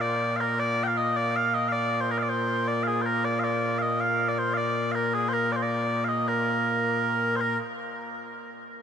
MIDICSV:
0, 0, Header, 1, 2, 480
1, 0, Start_track
1, 0, Key_signature, -2, "major"
1, 0, Tempo, 377358
1, 773, Time_signature, 6, 3, 24, 8
1, 11222, End_track
2, 0, Start_track
2, 0, Title_t, "Bagpipes"
2, 0, Program_c, 0, 109
2, 0, Note_on_c, 0, 46, 89
2, 0, Note_on_c, 0, 58, 89
2, 0, Note_on_c, 0, 65, 89
2, 17, Note_on_c, 0, 74, 108
2, 464, Note_off_c, 0, 74, 0
2, 464, Note_on_c, 0, 77, 89
2, 516, Note_off_c, 0, 77, 0
2, 516, Note_on_c, 0, 70, 89
2, 756, Note_off_c, 0, 70, 0
2, 756, Note_on_c, 0, 74, 127
2, 1064, Note_off_c, 0, 74, 0
2, 1064, Note_on_c, 0, 79, 94
2, 1112, Note_off_c, 0, 79, 0
2, 1112, Note_on_c, 0, 77, 94
2, 1237, Note_off_c, 0, 77, 0
2, 1237, Note_on_c, 0, 75, 101
2, 1482, Note_off_c, 0, 75, 0
2, 1482, Note_on_c, 0, 74, 112
2, 1733, Note_off_c, 0, 74, 0
2, 1733, Note_on_c, 0, 77, 116
2, 1964, Note_off_c, 0, 77, 0
2, 1964, Note_on_c, 0, 75, 93
2, 2142, Note_off_c, 0, 75, 0
2, 2142, Note_on_c, 0, 77, 113
2, 2192, Note_off_c, 0, 77, 0
2, 2192, Note_on_c, 0, 74, 113
2, 2554, Note_off_c, 0, 74, 0
2, 2554, Note_on_c, 0, 72, 84
2, 2682, Note_off_c, 0, 72, 0
2, 2682, Note_on_c, 0, 70, 90
2, 2778, Note_off_c, 0, 70, 0
2, 2778, Note_on_c, 0, 77, 71
2, 2833, Note_off_c, 0, 77, 0
2, 2833, Note_on_c, 0, 74, 71
2, 2917, Note_off_c, 0, 74, 0
2, 2917, Note_on_c, 0, 72, 94
2, 3406, Note_off_c, 0, 72, 0
2, 3406, Note_on_c, 0, 74, 91
2, 3605, Note_off_c, 0, 74, 0
2, 3605, Note_on_c, 0, 77, 97
2, 3656, Note_off_c, 0, 77, 0
2, 3656, Note_on_c, 0, 68, 97
2, 3838, Note_off_c, 0, 68, 0
2, 3838, Note_on_c, 0, 72, 68
2, 3885, Note_off_c, 0, 72, 0
2, 3885, Note_on_c, 0, 70, 97
2, 4127, Note_off_c, 0, 70, 0
2, 4127, Note_on_c, 0, 74, 97
2, 4322, Note_off_c, 0, 74, 0
2, 4322, Note_on_c, 0, 77, 92
2, 4376, Note_off_c, 0, 77, 0
2, 4376, Note_on_c, 0, 74, 92
2, 4817, Note_off_c, 0, 74, 0
2, 4817, Note_on_c, 0, 77, 81
2, 4859, Note_off_c, 0, 77, 0
2, 4859, Note_on_c, 0, 75, 81
2, 5094, Note_off_c, 0, 75, 0
2, 5094, Note_on_c, 0, 77, 116
2, 5451, Note_off_c, 0, 77, 0
2, 5451, Note_on_c, 0, 74, 83
2, 5578, Note_off_c, 0, 74, 0
2, 5578, Note_on_c, 0, 72, 94
2, 5774, Note_off_c, 0, 72, 0
2, 5774, Note_on_c, 0, 77, 99
2, 5818, Note_off_c, 0, 77, 0
2, 5818, Note_on_c, 0, 74, 99
2, 6256, Note_off_c, 0, 74, 0
2, 6256, Note_on_c, 0, 77, 83
2, 6298, Note_off_c, 0, 77, 0
2, 6298, Note_on_c, 0, 70, 83
2, 6539, Note_off_c, 0, 70, 0
2, 6539, Note_on_c, 0, 68, 98
2, 6725, Note_off_c, 0, 68, 0
2, 6725, Note_on_c, 0, 72, 98
2, 6779, Note_off_c, 0, 72, 0
2, 6779, Note_on_c, 0, 70, 98
2, 7022, Note_off_c, 0, 70, 0
2, 7022, Note_on_c, 0, 74, 91
2, 7076, Note_off_c, 0, 74, 0
2, 7076, Note_on_c, 0, 72, 81
2, 7153, Note_off_c, 0, 72, 0
2, 7153, Note_on_c, 0, 74, 92
2, 7273, Note_off_c, 0, 74, 0
2, 7273, Note_on_c, 0, 74, 102
2, 7690, Note_off_c, 0, 74, 0
2, 7690, Note_on_c, 0, 77, 72
2, 7741, Note_off_c, 0, 77, 0
2, 7741, Note_on_c, 0, 75, 89
2, 7988, Note_off_c, 0, 75, 0
2, 7988, Note_on_c, 0, 70, 87
2, 9362, Note_off_c, 0, 70, 0
2, 9362, Note_on_c, 0, 72, 90
2, 9418, Note_off_c, 0, 72, 0
2, 9418, Note_on_c, 0, 70, 90
2, 9639, Note_off_c, 0, 46, 0
2, 9639, Note_off_c, 0, 58, 0
2, 9639, Note_off_c, 0, 65, 0
2, 9639, Note_off_c, 0, 70, 0
2, 11222, End_track
0, 0, End_of_file